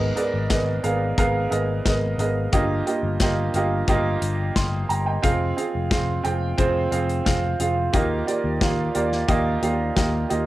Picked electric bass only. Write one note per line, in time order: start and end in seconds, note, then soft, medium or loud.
0.00 0.10 G#1 medium
0.34 0.47 G#1 medium
0.50 0.78 G#1 medium
0.84 1.12 G#1 medium
1.18 1.46 G#1 medium
1.51 1.79 G#1 medium
1.86 2.13 G#1 medium
2.18 2.46 G#1 medium
2.53 2.81 G1 medium
3.03 3.17 G1 medium
3.21 3.48 G1 medium
3.54 3.82 G1 medium
3.88 4.16 G1 medium
4.22 4.50 G1 medium
4.56 4.84 G1 medium
4.89 5.17 G1 medium
5.23 5.51 F1 medium
5.75 5.88 F1 medium
6.25 6.52 F1 medium
6.58 6.86 F1 medium
6.92 7.20 F1 medium
7.26 7.54 F1 medium
7.60 7.88 F1 medium
7.94 8.21 D#2 medium
8.44 8.58 D#2 medium
8.61 8.89 D#2 medium
8.96 9.23 D#2 medium
9.29 9.56 D#2 medium
9.62 9.90 D#2 medium
9.97 10.24 D#2 medium
10.31 10.46 D#2 medium